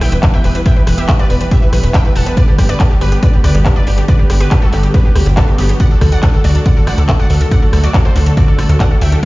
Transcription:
0.01 B1 B3 E5 G5, cross-stick, open hi-hat
0.12 E1 E3 B4, closed hi-hat
0.23 E3 B4, kick, clap, closed hi-hat
0.33 B3 E5 G5
0.44 E1 E3 B4, open hi-hat
0.55 E3 B4, closed hi-hat
0.65 B3 E5 G5, kick, closed hi-hat
0.76 E3 B4
0.87 E1 E3 B4, cross-stick, open hi-hat
0.97 B3 G4 E5, closed hi-hat
1.08 E3 B4, kick, clap, closed hi-hat
1.19 E3 B4 D5
1.30 E1 B3 B4, open hi-hat
1.41 E3 B4, closed hi-hat
1.51 E3 G4 E5, kick, closed hi-hat
1.62 B3 B4
1.72 B1 E3 B4, cross-stick, open hi-hat
1.83 E1 E3 B4, closed hi-hat
1.94 B3 E5 G5, kick, clap, closed hi-hat
2.05 E3 B4
2.15 E1 E3 F#5 A5, open hi-hat
2.26 B3 B4, closed hi-hat
2.37 D3 B4 D5, kick, closed hi-hat
2.48 D3 G4
2.58 G1 G3 G4, kick, cross-stick, open hi-hat
2.69 D3 B4 D5, closed hi-hat
2.80 D3 G4, kick, clap, closed hi-hat
2.90 G3 G4
3.01 G1 D3 G4 B4, open hi-hat
3.12 D3 G4, closed hi-hat
3.23 G3 B4 D5, kick, closed hi-hat
3.33 D3 G4
3.44 D2 D3 B4 D5, cross-stick, open hi-hat
3.55 G1 G3 G4, closed hi-hat
3.65 D3 G4, kick, clap, closed hi-hat
3.76 D3 B4 D5
3.87 G1 G3 G4, open hi-hat
3.98 D3 G4, closed hi-hat
4.08 D3 B4 D5, kick, closed hi-hat
4.19 G3 G4
4.30 G1 D3 G4, cross-stick, open hi-hat
4.40 D3 G4 B4, closed hi-hat
4.51 G3 G4, kick, clap, closed hi-hat
4.62 D3 F#4 A4
4.73 G1 D3 G4, clap, open hi-hat
4.83 G3 G4, closed hi-hat
4.94 D3 G4 B4, kick, closed hi-hat
5.05 D3 G4
5.15 D2 F#3 G4, cross-stick, open hi-hat
5.26 G1 G3 G4, closed hi-hat
5.37 B3 F#4 A4, kick, clap, closed hi-hat
5.48 B3 G4
5.58 G1 F#3 B3 G4, open hi-hat
5.69 F#3 G4, closed hi-hat
5.80 D3 D5 F#5, kick, closed hi-hat
5.91 D4 A4
6.01 D2 D3 A4, kick, cross-stick, open hi-hat
6.12 D3 D5 F#5, closed hi-hat
6.23 D4 A4, kick, clap, closed hi-hat
6.34 D3 A4
6.44 D2 D3 F#4 D5, open hi-hat
6.55 D4 A4, closed hi-hat
6.66 D3 D5 F#5, kick, closed hi-hat
6.76 D3 A4
6.87 A1 D4 D5 F#5, cross-stick, open hi-hat
6.98 D2 D3 A4, closed hi-hat
7.08 D3 A4, kick, clap, closed hi-hat
7.19 D4 D5 F#5
7.30 D2 D3 A4, open hi-hat
7.40 D3 A4, closed hi-hat
7.51 D4 D5 F#5, kick, closed hi-hat
7.62 D3 A4
7.73 D2 D3 A4, cross-stick, open hi-hat
7.83 D4 F#4 D5, closed hi-hat
7.94 D3 A4, kick, clap, closed hi-hat
8.05 D3 A4 C5
8.16 D2 D4 A4, open hi-hat
8.26 D3 A4, closed hi-hat
8.37 D3 F#4 D5, kick, closed hi-hat
8.48 D4 A4
8.58 A1 D3 A4, cross-stick, open hi-hat
8.69 D2 D3 A4, closed hi-hat
8.80 D4 D5 F#5, kick, clap, closed hi-hat
8.91 D3 A4
9.01 D2 D3 E5 G5, open hi-hat
9.12 D4 A4, closed hi-hat

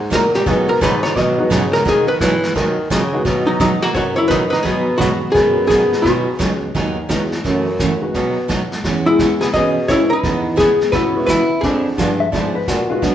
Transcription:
Already playing: G#2
0.10 A#2 F#3 A#3 D#4 F#4, kick, snare, hi-hat pedal
0.15 A#4
0.34 G4, snare
0.46 B2 D#3 F#3 G#3 B3 D#4 F#4 G#4, brush sweep, kick, snare
0.69 A#4
0.81 G#2 B2 D#3 F#3 B3 D#4 G#4 B4, kick, snare, hi-hat pedal
1.03 C#5, snare
1.16 B2 D#3 F#3 B3 D#4 G#4 D#5, brush sweep, kick, snare
1.38 F#3 G#3 B3 D#4 F#4
1.50 B2 C#3 D#3 F#3 B3 D#4 G#4, kick, snare, hi-hat pedal
1.73 A#4, snare
1.85 B2 D#3 F#3 B3 D#4 G#4, brush sweep, kick, snare
2.08 B4
2.20 B2 D#3 E3 F#3 B3 D#4 G#4, kick, snare, hi-hat pedal
2.43 snare
2.55 B2 D#3 F#3 B3 D#4 G#4, brush sweep, kick, snare
2.90 B2 C#3 D#3 F#3 B3 D#4 G#4, kick, snare, hi-hat pedal
3.13 F#3 G#3 B3 D#4 F#4
3.25 B2 D#3 F#3 B3 D#4 G#4, brush sweep, kick, snare
3.47 F#3 D#4
3.59 B2 D#3 F#3 G#3 B3 D#4 F#4 G#4, kick, snare, hi-hat pedal
3.82 A#3 F#4, snare
3.95 F#2 B2 D#3 F#3 B3 D#4 F#4 G#4 C#5, brush sweep, kick, snare
4.16 E4 C#5
4.28 B2 D#3 F#3 B3 D#4 G#4 B4, kick, snare, hi-hat pedal
4.50 D#4 B4, snare
4.63 B2 D#3 F#3 B3 D#4 G#4, brush sweep, kick, snare
4.98 B2 D#3 F#3 G#3 B3 D#4 F#4 G#4, kick, snare, hi-hat pedal
5.32 F#2 B2 D#3 F#3 B3 G#4, brush sweep, kick, snare
5.36 B3 D#4 G#4
5.67 B2 D#3 F#3 B3 D#4 G#4, kick, snare, hi-hat pedal
5.92 snare
6.02 B2 D#3 F#3 B3 D#4 F#4, brush sweep, kick, snare
6.06 G#4
6.39 C#2 B2 D#3 F#3 B3 D#4 G#4, kick, snare, hi-hat pedal
6.74 D#2 B2 D#3 F#3 B3 D#4 G#4, brush sweep, kick, snare
7.09 E2 B2 D#3 F#3 G#3 B3 D#4 F#4 G#4, kick, snare, hi-hat pedal
7.32 snare
7.44 F#2 C#3 E3 A3 C#4 F#4, brush sweep, kick, snare
7.80 C#3 E3 A3 C#4 F#4, kick, snare, hi-hat pedal
8.00 G#3 B3 D#4 F#4
8.14 B2 D#3 F#3 B3 D#4 G#4, brush sweep, kick, snare
8.48 B2 D#3 F#3 B3 D#4 G#4, kick, snare, hi-hat pedal
8.72 snare
8.84 E2 E3 B3 C#4 G#4, brush sweep, kick, snare
9.06 G#3 E4
9.19 E3 B3 C#4 G#4, kick, snare, hi-hat pedal
9.41 B3 G#4, snare
9.54 B2 E3 B3 C#4 G#4 D#5, brush sweep, kick, snare
9.88 E3 G#3 B3 C#4 E4 G#4 C#5, kick, snare, hi-hat pedal
10.10 D#4 B4
10.23 E2 E3 B3 C#4 G#4, brush sweep, kick, snare
10.56 E3 B3 C#4 G#4, kick, snare, hi-hat pedal
10.61 B3
10.80 snare
10.92 B2 E3 B3 C#4 E4 G#4 B4, brush sweep, kick, snare
11.15 G#3 B3 C#4 E4
11.27 E3 B3 C#4 E4 G#4 B4, kick, snare, hi-hat pedal
11.61 F2 F3 B3 D4 G#4, brush sweep, kick, snare
11.65 D4 G#4
11.98 G2 F3 G#3 B3 D4 F4 G#4, kick, snare, hi-hat pedal
12.20 E5
12.32 G#2 F3 B3 D4 G#4 D5, brush sweep, kick, snare
12.55 B4
12.67 A#2 F3 B3 D4 F#4 G#4, kick, snare, hi-hat pedal
12.90 G#3 B3 D#4 F4 F#4
13.02 B2 D#3 F#3 B3 D4 D#4 G#4, brush sweep, kick, snare

